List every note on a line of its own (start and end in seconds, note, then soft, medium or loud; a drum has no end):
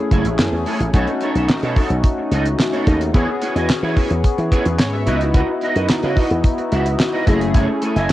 0.00 0.90 A3 medium
0.00 0.90 C#4 medium
0.00 0.90 E4 medium
0.00 0.90 G#4 medium
0.11 0.23 F#1 medium
0.11 0.26 A3 medium
0.11 0.25 E4 medium
0.11 0.25 G#4 medium
0.11 0.24 C#5 medium
0.11 kick medium
0.11 closed hi-hat medium
0.25 0.37 A1 loud
0.25 muted clean electric guitar stroke medium
0.25 closed hi-hat medium
0.39 0.51 F#2 loud
0.39 muted clean electric guitar stroke soft
0.39 snare loud
0.39 clap loud
0.39 closed hi-hat medium
0.53 0.64 E2 medium
0.53 muted clean electric guitar stroke soft
0.66 0.81 A3 medium
0.66 0.80 E4 medium
0.66 0.80 G#4 medium
0.66 0.79 C#5 medium
0.66 open hi-hat medium
0.80 0.92 A1 medium
0.80 muted clean electric guitar stroke soft
0.80 closed hi-hat medium
0.93 1.05 B1 loud
0.93 3.10 A3 medium
0.93 1.08 B3 medium
0.93 3.10 C#4 medium
0.93 3.10 D#4 medium
0.93 1.08 D#4 medium
0.93 3.11 F#4 medium
0.93 1.07 A4 loud
0.93 1.07 C#5 loud
0.93 kick medium
0.93 closed hi-hat medium
1.07 muted clean electric guitar stroke medium
1.07 closed hi-hat soft
1.21 1.33 B3 medium
1.21 1.33 D#4 medium
1.21 1.33 A4 medium
1.21 1.33 C#5 medium
1.21 closed hi-hat medium
1.35 1.47 B1 medium
1.35 1.47 B3 soft
1.35 1.47 D#4 soft
1.35 1.47 A4 medium
1.35 1.47 C#5 medium
1.35 closed hi-hat medium
1.49 muted slap bass stroke soft
1.49 muted clean electric guitar stroke soft
1.49 snare loud
1.49 clap medium
1.49 closed hi-hat loud
1.63 1.74 B2 medium
1.63 1.76 B3 medium
1.63 1.76 D#4 medium
1.63 1.76 A4 medium
1.63 1.77 C#5 medium
1.63 closed hi-hat soft
1.76 1.88 B3 medium
1.76 1.88 D#4 medium
1.76 1.88 A4 medium
1.76 1.88 C#5 medium
1.76 kick medium
1.76 open hi-hat medium
1.90 2.02 B1 medium
1.90 muted clean electric guitar stroke soft
1.90 closed hi-hat soft
2.04 kick loud
2.04 closed hi-hat medium
2.18 muted clean electric guitar stroke soft
2.31 2.54 C#2 medium
2.31 2.46 B3 medium
2.31 2.45 D#4 medium
2.31 2.45 A4 medium
2.31 2.45 D#5 medium
2.31 closed hi-hat medium
2.45 muted clean electric guitar stroke soft
2.45 closed hi-hat medium
2.59 muted clean electric guitar stroke soft
2.59 snare loud
2.59 clap loud
2.59 closed hi-hat medium
2.73 2.85 B3 medium
2.73 2.86 D#4 medium
2.73 2.86 A4 medium
2.73 2.87 C#5 medium
2.73 closed hi-hat soft
2.86 3.10 D#2 medium
2.86 2.98 B3 medium
2.86 2.98 D#4 medium
2.86 2.98 A4 medium
2.86 2.98 D#5 medium
2.86 kick medium
2.86 closed hi-hat medium
3.01 muted clean electric guitar stroke medium
3.01 closed hi-hat medium
3.14 3.26 E2 loud
3.14 5.03 B3 medium
3.14 3.28 B3 medium
3.14 5.03 C#4 medium
3.14 3.28 E4 medium
3.14 5.03 F#4 medium
3.14 3.27 G#4 loud
3.14 4.50 G#4 medium
3.14 3.27 C#5 loud
3.14 kick loud
3.14 closed hi-hat medium
3.28 muted clean electric guitar stroke soft
3.41 3.53 B3 medium
3.41 3.53 E4 medium
3.41 3.53 G#4 medium
3.41 3.53 C#5 medium
3.41 closed hi-hat medium
3.55 3.67 E2 medium
3.55 3.67 B3 medium
3.55 3.67 E4 soft
3.55 3.67 G#4 medium
3.55 3.67 D#5 medium
3.55 closed hi-hat medium
3.69 muted clean electric guitar stroke soft
3.69 muted slap bass stroke soft
3.69 snare loud
3.69 clap medium
3.69 closed hi-hat loud
3.83 3.94 E3 loud
3.83 3.95 B3 medium
3.83 3.96 E4 medium
3.83 3.96 G#4 medium
3.83 3.96 C#5 medium
3.97 4.08 B3 medium
3.97 4.08 E4 medium
3.97 4.08 G#4 medium
3.97 4.08 C#5 medium
3.97 kick medium
3.97 open hi-hat medium
4.10 4.22 E2 medium
4.10 muted clean electric guitar stroke medium
4.10 closed hi-hat soft
4.24 kick loud
4.24 closed hi-hat medium
4.38 4.50 E3 medium
4.38 muted clean electric guitar stroke soft
4.38 closed hi-hat soft
4.51 4.66 B3 medium
4.51 4.65 E4 medium
4.51 4.65 G#4 medium
4.51 4.78 G#4 medium
4.51 4.78 B4 medium
4.51 4.64 C#5 medium
4.51 kick medium
4.51 closed hi-hat medium
4.65 4.77 E2 loud
4.65 muted clean electric guitar stroke soft
4.65 closed hi-hat medium
4.79 5.08 G#2 medium
4.79 4.92 C#5 medium
4.79 muted clean electric guitar stroke soft
4.79 snare loud
4.79 clap loud
4.79 closed hi-hat loud
4.93 5.19 C#5 medium
4.93 5.19 E5 medium
4.93 muted clean electric guitar stroke soft
5.06 5.41 C#2 medium
5.06 7.23 B3 medium
5.06 7.23 D#4 medium
5.06 5.21 E4 medium
5.06 7.23 E4 medium
5.06 5.20 F#4 medium
5.06 7.23 F#4 medium
5.06 5.20 B4 medium
5.06 5.20 D#5 medium
5.06 closed hi-hat medium
5.21 muted clean electric guitar stroke soft
5.21 closed hi-hat soft
5.34 5.49 E4 loud
5.34 5.48 F#4 medium
5.34 5.48 B4 medium
5.34 5.47 D#5 loud
5.34 kick loud
5.34 closed hi-hat medium
5.48 muted clean electric guitar stroke medium
5.61 5.73 E4 medium
5.61 5.73 F#4 medium
5.61 5.73 B4 medium
5.61 5.74 D#5 medium
5.61 closed hi-hat medium
5.76 5.87 F#2 medium
5.76 5.87 E4 soft
5.76 5.87 F#4 soft
5.76 5.87 B4 medium
5.76 5.87 D#5 medium
5.76 closed hi-hat medium
5.89 muted clean electric guitar stroke medium
5.89 muted slap bass stroke soft
5.89 snare loud
5.89 clap medium
5.89 closed hi-hat loud
6.03 6.15 C#3 loud
6.03 6.15 E4 medium
6.03 6.16 F#4 medium
6.03 6.16 B4 medium
6.03 6.17 D#5 loud
6.03 closed hi-hat soft
6.17 6.28 E4 medium
6.17 6.28 F#4 medium
6.17 6.28 B4 medium
6.17 6.28 D#5 medium
6.17 kick medium
6.17 open hi-hat medium
6.30 6.42 E2 medium
6.30 muted clean electric guitar stroke soft
6.30 closed hi-hat soft
6.44 kick loud
6.44 closed hi-hat medium
6.58 muted clean electric guitar stroke soft
6.58 closed hi-hat soft
6.72 6.95 C#2 medium
6.72 6.86 E4 medium
6.72 6.85 F#4 medium
6.72 6.85 B4 medium
6.72 6.85 E5 medium
6.72 closed hi-hat medium
6.86 muted clean electric guitar stroke medium
6.86 closed hi-hat medium
6.99 muted clean electric guitar stroke soft
6.99 snare loud
6.99 clap medium
6.99 closed hi-hat loud
7.13 7.26 E4 medium
7.13 7.27 F#4 medium
7.13 7.27 B4 medium
7.13 7.27 D#5 medium
7.26 7.50 F#1 loud
7.26 8.12 A3 medium
7.26 7.38 A3 medium
7.26 8.12 C#4 medium
7.26 7.38 E4 medium
7.26 8.12 E4 medium
7.26 7.38 G#4 medium
7.26 7.81 G#4 loud
7.26 7.39 D#5 medium
7.26 kick medium
7.26 closed hi-hat medium
7.41 muted clean electric guitar stroke soft
7.41 closed hi-hat medium
7.54 7.66 F#1 loud
7.54 7.69 A3 medium
7.54 7.68 E4 medium
7.54 7.68 G#4 medium
7.54 7.67 C#5 medium
7.54 kick medium
7.54 closed hi-hat medium
7.68 muted clean electric guitar stroke soft
7.82 7.93 A3 medium
7.82 7.93 E4 medium
7.82 7.94 G#4 medium
7.82 7.94 C#5 medium
7.82 closed hi-hat medium
7.96 8.07 F#1 loud
7.96 8.07 A3 medium
7.96 8.07 E4 medium
7.96 8.07 G#4 medium
7.96 8.07 D#5 medium
7.96 8.09 E5 medium
7.96 8.09 G#5 medium
7.96 closed hi-hat medium
8.09 muted clean electric guitar stroke soft
8.09 closed hi-hat loud